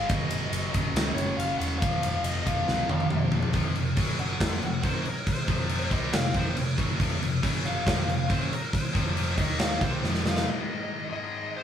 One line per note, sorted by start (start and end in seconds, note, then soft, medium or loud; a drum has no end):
0.08 0.25 F#1 medium
0.08 0.72 F#2 loud
0.08 0.73 C#3 loud
0.08 0.72 F#3 loud
0.08 0.70 D#5 loud
0.08 kick loud
0.08 ride loud
0.30 0.46 F#1 medium
0.30 ride medium
0.51 0.67 F#1 medium
0.51 ride loud
0.73 0.90 F#1 loud
0.73 1.81 F#2 medium
0.73 1.81 C#3 medium
0.73 1.80 F#3 medium
0.73 1.14 D#5 loud
0.73 kick medium
0.73 ride medium
0.94 1.10 C#2 loud
0.94 snare loud
0.94 ride loud
1.14 1.31 F#1 loud
1.14 1.38 C#5 medium
1.14 ride medium
1.37 1.53 F#1 loud
1.37 1.58 F5 medium
1.37 ride loud
1.58 1.82 E1 loud
1.58 1.80 C#3 medium
1.58 1.79 F#3 medium
1.58 1.78 F#5 loud
1.58 snare soft
1.58 ride medium
1.62 1.80 F#2 medium
1.78 1.97 F1 medium
1.78 2.45 F2 loud
1.78 2.24 F5 loud
1.78 kick loud
1.78 ride loud
1.83 2.46 C3 loud
1.83 2.45 F3 loud
2.02 2.18 F1 medium
2.02 ride medium
2.23 2.39 F1 medium
2.23 2.47 D#5 medium
2.23 ride loud
2.46 2.62 F1 medium
2.46 3.53 F2 medium
2.46 3.54 C3 medium
2.46 3.52 F3 medium
2.46 3.28 F5 medium
2.46 kick medium
2.46 ride medium
2.68 2.83 C2 medium
2.68 snare medium
2.89 3.05 F1 loud
2.89 high tom medium
3.00 high tom medium
3.10 3.27 F1 medium
3.10 mid tom loud
3.31 3.48 F1 medium
3.31 3.53 C3 medium
3.31 3.52 F3 medium
3.31 floor tom loud
3.35 3.52 F2 medium
3.43 floor tom medium
3.53 3.74 F1 medium
3.53 3.75 F2 loud
3.53 3.75 C3 loud
3.53 3.76 F3 loud
3.53 kick loud
3.53 crash medium
3.75 3.96 F1 medium
3.75 3.93 F2 medium
3.75 3.93 C3 medium
3.75 crash medium
3.97 4.37 F#1 medium
3.97 4.39 F#2 medium
3.97 4.40 C#3 loud
3.97 4.40 F#3 loud
3.97 kick loud
3.97 crash medium
4.19 4.82 F#5 medium
4.19 crash medium
4.40 4.60 F1 medium
4.40 4.61 F2 loud
4.40 4.61 C3 loud
4.40 4.62 F3 loud
4.40 kick loud
4.40 snare loud
4.40 crash medium
4.61 4.82 F1 medium
4.61 4.79 F2 medium
4.61 4.80 C3 medium
4.61 crash medium
4.83 5.04 F#1 medium
4.83 5.05 F#2 medium
4.83 5.05 C#3 medium
4.83 5.05 F#3 loud
4.83 5.05 C5 medium
4.83 kick loud
4.83 crash medium
5.05 5.27 A#4 loud
5.05 crash medium
5.27 5.91 C5 loud
5.27 kick loud
5.27 crash medium
5.48 5.88 F1 medium
5.48 5.91 F2 medium
5.48 5.90 C3 loud
5.48 5.91 F3 loud
5.48 kick loud
5.48 crash medium
5.69 crash medium
5.91 6.12 C2 medium
5.91 6.12 C3 medium
5.91 6.12 G3 loud
5.91 6.12 C4 medium
5.91 6.13 D#5 medium
5.91 kick medium
5.91 crash medium
6.12 6.33 F1 medium
6.12 6.30 F2 medium
6.12 6.30 C3 medium
6.12 6.34 F5 medium
6.12 snare loud
6.12 crash medium
6.34 6.55 F1 loud
6.34 6.54 F2 loud
6.34 6.55 C3 medium
6.34 6.56 F3 loud
6.34 6.56 C5 medium
6.34 kick loud
6.34 crash medium
6.55 6.76 F1 medium
6.55 6.73 F2 medium
6.55 6.74 C3 medium
6.55 crash medium
6.77 6.98 F#1 loud
6.77 6.99 F#2 medium
6.77 6.99 C#3 medium
6.77 6.99 F#3 loud
6.77 kick loud
6.77 crash medium
6.99 7.20 F1 loud
6.99 7.19 F2 loud
6.99 7.20 C3 loud
6.99 7.21 F3 loud
6.99 kick loud
6.99 crash medium
7.20 7.41 F1 medium
7.20 7.38 F2 medium
7.20 7.38 C3 medium
7.20 crash medium
7.42 7.83 F#1 loud
7.42 7.85 F#2 medium
7.42 7.85 C#3 loud
7.42 7.86 F#3 loud
7.42 kick loud
7.42 crash medium
7.66 8.28 F5 loud
7.66 crash medium
7.85 8.06 F1 medium
7.85 8.06 F2 medium
7.85 8.06 C3 loud
7.85 8.07 F3 loud
7.85 kick loud
7.85 snare loud
7.85 crash medium
8.07 8.27 F1 medium
8.07 8.25 F2 medium
8.07 8.25 C3 medium
8.07 crash medium
8.29 8.50 F#1 loud
8.29 8.50 F#2 medium
8.29 8.50 C#3 medium
8.29 8.51 F#3 loud
8.29 8.51 C5 loud
8.29 kick loud
8.29 crash medium
8.53 8.73 A#4 loud
8.53 crash medium
8.73 9.37 C5 loud
8.73 kick loud
8.73 crash medium
8.93 9.35 F1 loud
8.93 9.36 F2 loud
8.93 9.37 C3 loud
8.93 9.37 F3 loud
8.93 kick loud
8.93 crash medium
9.17 crash medium
9.37 9.78 D#2 medium
9.37 9.80 D#3 medium
9.37 9.80 A#3 medium
9.37 9.81 D#4 loud
9.37 9.59 D#5 loud
9.37 kick loud
9.37 crash medium
9.59 9.81 F5 medium
9.59 snare loud
9.59 crash medium
9.81 10.01 C2 loud
9.81 10.02 C3 medium
9.81 10.02 G3 medium
9.81 10.02 C4 loud
9.81 10.03 C5 loud
9.81 kick loud
9.81 crash medium
10.03 10.43 F1 medium
10.03 10.45 F2 medium
10.03 10.46 C3 loud
10.03 10.46 F3 loud
10.03 snare medium
10.15 snare medium
10.26 10.48 F5 loud
10.26 snare loud
10.37 snare medium
10.46 11.13 G#2 loud
10.46 11.10 D#3 loud
10.46 11.10 G#3 loud
10.46 11.11 D#5 loud
11.10 11.63 G#2 medium
11.10 11.63 D#3 medium
11.10 11.63 G#3 medium
11.10 11.56 D#5 loud
11.57 11.63 C5 medium